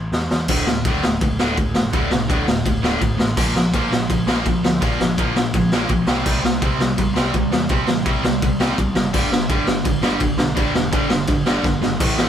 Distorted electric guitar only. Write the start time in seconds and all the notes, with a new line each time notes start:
0.49 D2 A2 D3
0.68 D2 A2
0.87 D2 A2 D3
1.05 D2 A2
1.22 D2 A2
1.39 D2 A2 D3
1.57 D2 A2
1.74 D2 A2
1.93 D2 A2 D3
2.10 D2 A2
2.29 D2 A2 D3
2.48 D2 A2
2.66 D2 A2
2.83 D2 A2 D3
3.01 D2 A2
3.18 D2 A2
3.37 A#2 F3 A#3
3.55 A#2 F3
3.74 A#2 F3 A#3
3.92 A#2 F3
4.10 A#2 F3
4.27 A#2 F3 A#3
4.46 A#2 F3
4.64 A#2 F3
4.81 A#2 F3 A#3
5.00 A#2 F3
5.18 A#2 F3 A#3
5.36 A#2 F3
5.55 A#2 F3
5.73 A#2 F3 A#3
5.89 A#2 F3
6.07 C3 G3 C4
6.25 C3 G3 C4
6.42 C3 G3
6.62 C3 G3 C4
6.80 C3 G3
6.97 C3 G3
7.15 C3 G3 C4
7.35 C3 G3
7.52 C3 G3
7.70 C3 G3 C4
7.87 C3 G3
8.05 C3 G3 C4
8.24 C3 G3
8.43 C3 G3
8.60 C3 G3 C4
8.78 C3 G3
8.95 C3 G3
9.13 G2 D3 G3
9.32 G2 D3
9.49 G2 D3 G3
9.65 G2 D3
9.84 G2 D3
10.02 G2 D3 G3
10.20 G2 D3
10.38 G2 D3
10.56 G2 D3 G3
10.75 G2 D3
10.92 G2 D3 G3
11.10 G2 D3
11.28 G2 D3
11.46 G2 D3 G3
11.65 G2 D3
11.82 G2 D3
12.00 A2 E3 A3